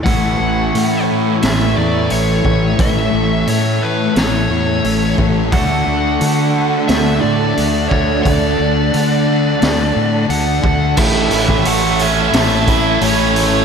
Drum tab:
CC |----------------|----------------|----------------|----------------|
HH |o---o---o---o---|o---o---o---o---|o---o---o---o---|o---o---o---o---|
SD |--------o-------|--------o-------|--------o-------|--------o-------|
BD |o-------------o-|o-------------o-|o-------------o-|o-------------o-|

CC |x---------------|
HH |--o-o-o-o-o-o-o-|
SD |--------o-------|
BD |o--o------o-----|